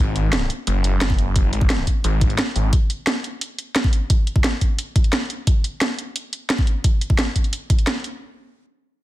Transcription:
0.00 detuned saw bass G#1
0.16 closed hi-hat
0.33 snare, closed hi-hat
0.50 closed hi-hat
0.67 detuned saw bass F#1, closed hi-hat
0.84 closed hi-hat
1.01 snare, closed hi-hat
1.10 kick
1.19 closed hi-hat
1.36 kick, closed hi-hat
1.53 detuned saw bass G#1, closed hi-hat
1.61 kick
1.70 snare, closed hi-hat
1.87 kick, closed hi-hat
2.04 detuned saw bass G#1, closed hi-hat
2.21 kick, closed hi-hat
2.30 closed hi-hat
2.38 snare, closed hi-hat
2.56 detuned saw bass G#1, closed hi-hat
2.73 kick, closed hi-hat
2.90 closed hi-hat
3.07 snare, closed hi-hat
3.24 closed hi-hat
3.41 closed hi-hat
3.58 closed hi-hat
3.76 snare, closed hi-hat
3.84 kick
3.93 closed hi-hat
4.10 kick, closed hi-hat
4.27 closed hi-hat
4.36 kick
4.44 snare, closed hi-hat
4.61 kick, closed hi-hat
4.79 closed hi-hat
4.96 kick, closed hi-hat
5.04 closed hi-hat
5.13 snare, closed hi-hat
5.30 closed hi-hat
5.47 kick, closed hi-hat
5.64 closed hi-hat
5.81 snare, closed hi-hat
5.99 closed hi-hat
6.16 closed hi-hat
6.33 closed hi-hat
6.50 snare, closed hi-hat
6.59 kick
6.67 closed hi-hat
6.84 kick, closed hi-hat
7.01 closed hi-hat
7.10 kick
7.19 snare, closed hi-hat
7.36 kick, closed hi-hat
7.44 closed hi-hat
7.53 closed hi-hat
7.70 kick, closed hi-hat
7.79 closed hi-hat
7.87 snare, closed hi-hat
8.04 closed hi-hat

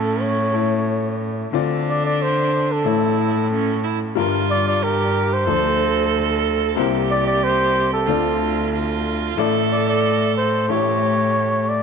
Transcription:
Already playing: upright piano A1 A2 A3 E4 C#5, cello A2, viola C#4, flugelhorn A4
0.21 flugelhorn C#5
0.53 upright piano A3 E4 C#5
1.53 upright piano D2 D3 C4 F4 D5, cello D3, viola D4
1.89 flugelhorn D5
2.05 flugelhorn D5
2.22 flugelhorn C5
2.72 flugelhorn A4
2.85 upright piano A1 A2 A3 E4 C#5, cello A2, viola E4
3.52 viola C#4
3.84 viola E4
4.15 upright piano G1 G2 G3 F4 A#4, cello G2, viola F4
4.51 flugelhorn D5
4.67 flugelhorn D5
4.83 viola G4, flugelhorn A#4
5.33 flugelhorn C5
5.47 upright piano D2 D3 F3 D4 C5, cello D2, viola A4
6.76 upright piano C2 C3 A#3 E4 C5, cello C2, viola G4
7.11 flugelhorn D5
7.27 flugelhorn D5
7.44 flugelhorn C5
7.93 flugelhorn A4
8.07 upright piano D2 D3 C4 F4 D5, cello D2, viola F4
8.73 viola F4
9.37 upright piano A1 A2 A3 E4 D5, cello A2, viola A4
9.72 flugelhorn D5
9.88 flugelhorn D5
10.37 flugelhorn C5
10.68 upright piano A1 A2 A3 E4 C#5, cello A2, viola G4, flugelhorn C#5
11.70 flugelhorn D5

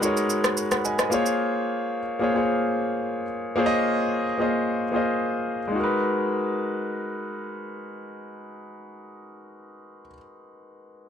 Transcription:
Already playing: grand piano D#4 F#4 A#4 B4 C#5
0.00 grand piano G#3 D#4 F#4, shaker
0.04 grand piano A#4 C#5
0.17 shaker
0.30 shaker
0.44 cross-stick, shaker
0.57 shaker
0.71 grand piano F#5 B5, cross-stick, shaker
0.85 grand piano D#5 G#5, shaker
0.99 grand piano A#4 D#5, cross-stick, shaker
1.10 grand piano A#3 F4 G#4 C5 C#5, shaker
1.26 shaker
2.19 grand piano A#3 F4 G#4 C5
2.23 grand piano C#5
2.33 grand piano A#3 F4 G#4 C5 C#5
3.56 grand piano A#3 F4 G#4 C5 C#5
3.66 grand piano D#5
4.38 grand piano A#3 F4 G#4 C5 D#5
4.92 grand piano A#3 F4 G#4 C5
4.96 grand piano D#5
5.68 grand piano G#3 D#4
5.76 grand piano F#4 A#4
5.83 grand piano B4

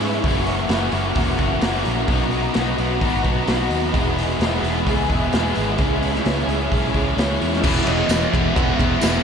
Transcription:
Already playing: overdriven electric guitar C#3 E3 G#3 C#4 E4, string machine B4 E5 G#5 C#6
0.00 fingered electric bass G#2, overdriven electric guitar G#3 C#4 E4, open hi-hat
0.24 fingered electric bass F#1, overdriven electric guitar F#2 C#3 E3 A#3 C#4 E4 F#4, string machine F#5 A#5, kick, open hi-hat
0.47 overdriven electric guitar E3 A#3 E4, open hi-hat
0.69 fingered electric bass F#1, overdriven electric guitar C#3 E3 A#3 C#4 E4 F#4, snare, open hi-hat
0.92 fingered electric bass F#1, overdriven electric guitar E3 A#3 E4, open hi-hat
1.15 fingered electric bass E1, overdriven electric guitar F#2 C#3 E3 A#3 C#4 E4 F#4, kick, open hi-hat
1.37 fingered electric bass F#1, overdriven electric guitar E3 A#3 C#4 E4 F#4, kick, open hi-hat
1.61 fingered electric bass F#1, overdriven electric guitar C#3 E3 A#3 C#4 E4 F#4, snare, open hi-hat
1.85 fingered electric bass A#1, overdriven electric guitar E3 A#3 E4, open hi-hat
2.08 fingered electric bass B1, overdriven electric guitar B2 F#3 B3 D#4 F#4, string machine D#5 F#5 B5, kick, open hi-hat
2.31 overdriven electric guitar F#3 B3 D#4, open hi-hat
2.54 fingered electric bass B1, overdriven electric guitar B2 F#3 B3 D#4 F#4, snare, open hi-hat
2.78 fingered electric bass B1, overdriven electric guitar F#3 B3 D#4, open hi-hat
3.01 fingered electric bass G#1, overdriven electric guitar B2 F#3 B3 D#4 F#4, kick, open hi-hat
3.22 fingered electric bass B1, overdriven electric guitar F#3 B3 D#4 F#4, kick, open hi-hat
3.47 fingered electric bass B1, overdriven electric guitar B2 F#3 B3 D#4 F#4, snare, open hi-hat
3.70 fingered electric bass D#2, overdriven electric guitar F#3 B3 D#4, open hi-hat
3.92 fingered electric bass E1, overdriven electric guitar E2 B2 E3 G#3 B3 E4 G#4, string machine G#4 E5, kick, open hi-hat
4.18 overdriven electric guitar G#3 B3 E4, open hi-hat
4.40 fingered electric bass E1, overdriven electric guitar E3 G#3 B3 E4 G#4, snare, open hi-hat
4.63 fingered electric bass E1, overdriven electric guitar G#3 B3 E4, open hi-hat
4.86 fingered electric bass C#2, overdriven electric guitar E2 B2 E3 G#3 B3 E4 G#4, kick, open hi-hat
5.09 fingered electric bass E1, overdriven electric guitar E3 G#3 B3 E4 G#4, kick, open hi-hat
5.32 fingered electric bass E1, overdriven electric guitar E3 G#3 B3 E4, snare, open hi-hat
5.36 overdriven electric guitar G#4
5.54 fingered electric bass G#1, overdriven electric guitar G#3 B3 E4, open hi-hat
5.77 fingered electric bass C#2, overdriven electric guitar C#3 E3 G#3 C#4 E4, string machine G#4 C#5 E5, kick, open hi-hat
6.01 overdriven electric guitar G#3 C#4 E4, open hi-hat
6.15 snare
6.24 fingered electric bass C#2, overdriven electric guitar C#3 E3 G#3 C#4 E4, snare, open hi-hat
6.47 fingered electric bass C#2, overdriven electric guitar G#3 C#4 E4, open hi-hat
6.69 fingered electric bass B1, overdriven electric guitar C#3 E3 G#3 C#4 E4, kick, open hi-hat
6.92 fingered electric bass C#2, overdriven electric guitar G#3 C#4 E4, kick, open hi-hat
7.15 fingered electric bass C#2, overdriven electric guitar C#3 E3 G#3 C#4 E4, soft synth lead C#5, snare, open hi-hat
7.38 fingered electric bass E2, overdriven electric guitar G#3 C#4 E4, open hi-hat
7.53 snare
7.60 distorted electric guitar E2 B2, overdriven electric guitar E2 E3 G#3 B3 E4, soft synth lead E5, kick, crash
7.65 fingered electric bass E1, overdriven electric guitar B2, distorted electric guitar E3
7.84 fingered electric bass E1, overdriven electric guitar G#3 B3 E4, soft synth lead D#5, ride
7.88 overdriven electric guitar E3 G#3 E4
8.08 fingered electric bass E1, overdriven electric guitar E2 B2 E3 G#3 B3 E4, snare, ride, tambourine
8.12 overdriven electric guitar G#3
8.30 fingered electric bass E1, overdriven electric guitar E3 G#3 B3 E4, soft synth lead E5, kick
8.34 overdriven electric guitar E3 G#3 B3, ride
8.54 fingered electric bass E1, distorted electric guitar E2 B2 E3, overdriven electric guitar E3 G#3 B3 E4, soft synth lead F#5, kick, ride
8.76 fingered electric bass E1, overdriven electric guitar G#3 B3 E4, soft synth lead E5, kick, ride
8.82 overdriven electric guitar E3
9.01 fingered electric bass E1, overdriven electric guitar E3 G#3 B3 E4, snare, ride, tambourine

